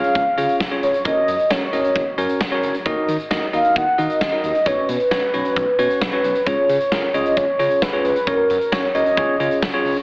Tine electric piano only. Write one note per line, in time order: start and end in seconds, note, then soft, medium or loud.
0.00 0.22 C#4 medium
0.00 0.22 F4 medium
0.00 0.22 G#4 medium
0.00 0.22 C#5 medium
0.38 0.60 C#4 medium
0.38 0.60 F4 medium
0.38 0.60 G#4 medium
0.38 0.60 C#5 medium
0.71 0.94 C#4 medium
0.71 0.94 F4 medium
0.71 0.94 G#4 medium
0.71 0.94 C#5 medium
1.05 1.35 C#4 medium
1.05 1.35 F#4 medium
1.05 1.35 A#4 medium
1.05 1.35 C#5 medium
1.50 1.65 C#4 medium
1.50 1.65 F#4 medium
1.50 1.65 A#4 medium
1.50 1.65 C#5 medium
1.73 2.03 C#4 medium
1.73 2.02 F#4 medium
1.73 2.02 A#4 medium
1.73 2.03 D#5 medium
2.18 2.40 C#4 medium
2.18 2.40 F#4 medium
2.18 2.40 A#4 medium
2.18 2.40 C#5 medium
2.52 2.74 C#4 medium
2.52 2.74 F#4 medium
2.52 2.74 A#4 medium
2.52 2.74 C#5 medium
2.86 3.15 D#4 medium
2.86 3.15 F#4 medium
2.86 3.15 A#4 medium
2.86 3.15 D#5 medium
3.31 3.46 D#4 medium
3.31 3.46 F#4 medium
3.31 3.46 A#4 medium
3.31 3.46 D#5 loud
3.53 3.83 D#4 medium
3.53 3.83 F#4 medium
3.53 3.83 A#4 medium
3.53 3.83 D#5 medium
3.98 4.21 D#4 medium
3.98 4.21 F#4 medium
3.98 4.21 A#4 medium
3.98 4.21 D#5 medium
4.32 4.54 D#4 medium
4.32 4.54 F#4 medium
4.32 4.54 A#4 medium
4.32 4.54 D#5 medium
4.66 4.96 C#4 medium
4.66 4.96 F#4 medium
4.66 4.96 B4 medium
4.66 4.96 C#5 medium
5.11 5.26 C#4 medium
5.11 5.26 F#4 medium
5.11 5.26 B4 medium
5.11 5.26 C#5 medium
5.34 5.63 C#4 medium
5.34 5.63 F#4 medium
5.34 5.63 B4 medium
5.34 5.63 C#5 medium
5.79 6.01 C#4 medium
5.79 6.01 F#4 medium
5.79 6.01 B4 medium
5.79 6.01 C#5 medium
6.13 6.35 C#4 medium
6.13 6.35 F#4 medium
6.13 6.35 B4 medium
6.13 6.35 C#5 medium
6.47 6.76 C#4 medium
6.47 6.76 F4 medium
6.47 6.76 G#4 medium
6.47 6.76 C#5 medium
6.92 7.07 C#4 medium
6.92 7.07 F4 medium
6.92 7.07 G#4 medium
6.92 7.07 A#4 medium
7.14 7.44 C#4 medium
7.14 7.44 F4 medium
7.14 7.44 G#4 medium
7.14 7.44 C#5 medium
7.59 7.82 C#4 medium
7.59 7.82 F4 medium
7.59 7.82 G#4 medium
7.59 7.82 C#5 medium
7.93 8.15 C#4 medium
7.93 8.15 F4 medium
7.93 8.15 G#4 medium
7.93 8.15 C#5 medium
8.27 8.57 C#4 medium
8.27 8.57 F#4 medium
8.27 8.57 A#4 medium
8.27 8.57 C#5 medium
8.72 8.87 C#4 medium
8.72 8.87 F#4 medium
8.72 8.87 A#4 medium
8.72 8.87 C#5 medium
8.95 9.16 C#4 medium
8.95 9.17 F#4 medium
8.95 9.17 A#4 medium
8.95 9.16 C#5 medium
9.17 9.35 C#4 medium
9.17 9.35 F4 medium
9.17 9.35 G#4 medium
9.17 9.35 C#5 medium
9.40 9.62 C#4 medium
9.40 9.62 F4 medium
9.40 9.62 G#4 medium
9.40 9.62 C#5 medium
9.74 9.96 C#4 medium
9.74 9.96 F4 medium
9.74 9.96 G#4 medium
9.74 9.96 C#5 loud